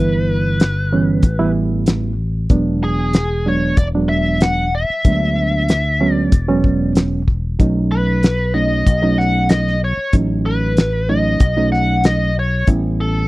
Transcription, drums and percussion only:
0.60 snare loud
0.60 closed hi-hat medium
1.23 kick loud
1.23 closed hi-hat medium
1.86 snare loud
1.86 closed hi-hat medium
2.50 kick loud
2.50 closed hi-hat medium
3.13 snare loud
3.13 closed hi-hat medium
3.77 kick loud
3.77 closed hi-hat medium
4.40 snare loud
4.40 closed hi-hat medium
5.05 kick loud
5.05 closed hi-hat medium
5.69 snare loud
5.69 closed hi-hat medium
6.32 kick loud
6.32 closed hi-hat medium
6.64 kick medium
6.95 snare loud
6.95 closed hi-hat medium
7.28 kick medium
7.60 kick medium
7.60 closed hi-hat medium
8.23 snare loud
8.23 closed hi-hat medium
8.87 kick loud
8.87 closed hi-hat medium
9.20 snare soft
9.49 snare loud
9.49 closed hi-hat medium
9.67 snare soft
10.13 kick loud
10.13 closed hi-hat medium
10.77 snare loud
10.77 closed hi-hat medium
11.40 kick loud
11.40 closed hi-hat medium
11.74 snare soft
12.04 snare loud
12.04 closed hi-hat medium
12.67 kick loud
12.67 closed hi-hat medium

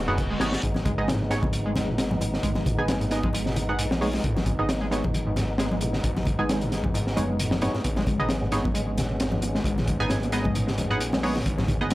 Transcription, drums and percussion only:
0.18 kick medium
0.18 closed hi-hat medium
0.40 snare medium
0.40 closed hi-hat medium
0.52 snare loud
0.52 closed hi-hat medium
0.63 kick loud
0.63 closed hi-hat medium
0.74 snare soft
0.74 high bongo medium
0.74 high conga medium
0.85 kick loud
0.85 closed hi-hat medium
0.85 low conga medium
1.08 snare loud
1.08 closed hi-hat medium
1.08 high conga medium
1.30 snare soft
1.30 closed hi-hat medium
1.43 kick loud
1.43 high conga medium
1.43 low conga medium
1.53 closed hi-hat medium
1.76 snare medium
1.76 closed hi-hat medium
1.76 high conga medium
1.76 low conga medium
1.98 snare loud
1.98 closed hi-hat medium
2.11 high conga loud
2.21 closed hi-hat medium
2.21 high bongo medium
2.34 snare medium
2.43 kick loud
2.43 closed hi-hat loud
2.55 snare soft
2.55 high bongo medium
2.55 high conga loud
2.66 kick medium
2.66 closed hi-hat medium
2.66 low conga loud
2.88 snare loud
2.88 closed hi-hat medium
2.88 high conga medium
3.01 closed hi-hat soft
3.10 snare soft
3.10 closed hi-hat medium
3.23 kick medium
3.23 high conga loud
3.23 low conga medium
3.33 closed hi-hat loud
3.33 high bongo medium
3.46 snare medium
3.55 closed hi-hat medium
3.55 high bongo medium
3.55 high conga medium
3.55 low conga medium
3.79 closed hi-hat medium
3.91 snare loud
3.91 high conga loud
4.02 open hi-hat medium
4.13 snare medium
4.13 high bongo medium
4.24 kick loud
4.24 closed hi-hat medium
4.37 snare medium
4.37 high bongo medium
4.37 high conga loud
4.46 kick loud
4.46 closed hi-hat medium
4.46 low conga loud
4.69 snare loud
4.69 closed hi-hat medium
4.69 high conga medium
4.91 snare soft
4.91 closed hi-hat medium
5.04 kick medium
5.04 high conga loud
5.04 low conga medium
5.14 closed hi-hat medium
5.36 snare soft
5.36 closed hi-hat medium
5.36 high conga medium
5.36 low conga medium
5.58 snare loud
5.58 closed hi-hat medium
5.72 high conga loud
5.81 closed hi-hat medium
5.81 high bongo medium
5.93 snare medium
6.04 kick loud
6.04 closed hi-hat medium
6.16 snare soft
6.16 high bongo soft
6.16 high conga loud
6.26 kick medium
6.26 closed hi-hat medium
6.26 low conga medium
6.49 snare loud
6.49 closed hi-hat medium
6.49 high conga medium
6.61 closed hi-hat soft
6.72 snare medium
6.72 closed hi-hat medium
6.84 kick medium
6.84 high conga loud
6.84 low conga medium
6.94 closed hi-hat medium
6.94 high bongo medium
7.07 snare medium
7.17 closed hi-hat medium
7.17 high bongo soft
7.17 high conga medium
7.17 low conga medium
7.39 closed hi-hat medium
7.51 snare loud
7.51 high conga medium
7.62 snare loud
7.62 closed hi-hat medium
7.74 snare medium
7.74 high bongo medium
7.84 kick loud
7.84 closed hi-hat medium
7.96 snare medium
7.96 high bongo medium
7.96 high conga medium
8.07 kick medium
8.07 closed hi-hat medium
8.07 low conga medium
8.29 snare loud
8.29 closed hi-hat medium
8.29 high conga medium
8.52 snare medium
8.52 closed hi-hat medium
8.65 kick medium
8.65 high conga medium
8.65 low conga medium
8.75 closed hi-hat medium
8.97 snare medium
8.97 closed hi-hat medium
8.97 high conga medium
8.97 low conga medium
9.20 snare loud
9.20 closed hi-hat medium
9.32 high conga loud
9.42 closed hi-hat medium
9.42 high bongo medium
9.55 snare medium
9.64 kick loud
9.64 closed hi-hat medium
9.78 snare soft
9.78 high bongo medium
9.78 high conga medium
9.88 kick medium
9.88 closed hi-hat medium
9.88 low conga medium
10.09 snare loud
10.09 closed hi-hat loud
10.09 high conga medium
10.23 closed hi-hat soft
10.32 snare soft
10.32 closed hi-hat medium
10.45 kick medium
10.45 high conga medium
10.45 low conga medium
10.55 closed hi-hat medium
10.55 high bongo medium
10.68 snare medium
10.78 closed hi-hat medium
10.78 high bongo medium
10.78 high conga medium
10.78 low conga medium
11.01 closed hi-hat medium
11.13 snare loud
11.13 high conga medium
11.23 open hi-hat medium
11.36 snare medium
11.36 high bongo medium
11.46 kick loud
11.46 closed hi-hat medium
11.58 snare medium
11.58 high bongo medium
11.58 high conga medium
11.68 kick medium
11.68 closed hi-hat medium
11.68 low conga loud
11.90 closed hi-hat medium

